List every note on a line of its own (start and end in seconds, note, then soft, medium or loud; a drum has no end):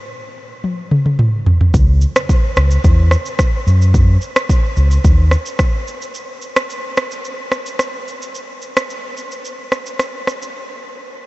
0.64 high tom medium
0.91 mid tom medium
1.06 mid tom medium
1.19 mid tom medium
1.46 floor tom loud
1.61 floor tom loud
1.74 2.04 C#2 medium
1.74 kick loud
1.74 shaker medium
2.01 shaker medium
2.16 cross-stick loud
2.16 shaker medium
2.29 kick medium
2.29 shaker medium
2.56 2.76 C#2 medium
2.56 cross-stick loud
2.56 shaker medium
2.71 shaker medium
2.84 3.14 E2 loud
2.84 kick loud
2.84 shaker medium
3.11 cross-stick medium
3.11 shaker soft
3.26 shaker medium
3.39 kick medium
3.39 cross-stick medium
3.39 shaker medium
3.67 4.16 F#2 medium
3.67 shaker medium
3.82 shaker medium
3.94 kick loud
3.94 shaker medium
4.21 shaker medium
4.36 cross-stick loud
4.36 shaker medium
4.49 kick medium
4.49 shaker medium
4.77 4.96 C#2 medium
4.77 shaker soft
4.91 shaker medium
5.04 5.34 D#2 loud
5.04 kick loud
5.04 shaker medium
5.31 cross-stick medium
5.31 shaker soft
5.46 shaker medium
5.59 kick medium
5.59 cross-stick medium
5.59 shaker medium
5.88 shaker medium
6.02 shaker medium
6.14 shaker medium
6.42 shaker medium
6.56 cross-stick loud
6.56 shaker medium
6.70 shaker medium
6.97 cross-stick loud
6.97 shaker soft
7.11 shaker medium
7.25 shaker medium
7.52 cross-stick medium
7.52 shaker soft
7.66 shaker medium
7.79 cross-stick medium
7.79 shaker medium
8.08 shaker medium
8.22 shaker medium
8.35 shaker medium
8.62 shaker soft
8.77 cross-stick loud
8.77 shaker medium
8.90 shaker medium
9.17 shaker soft
9.31 shaker medium
9.45 shaker medium
9.72 cross-stick medium
9.72 shaker soft
9.86 shaker medium
9.99 cross-stick medium
9.99 shaker medium
10.27 cross-stick medium
10.27 shaker medium
10.42 shaker medium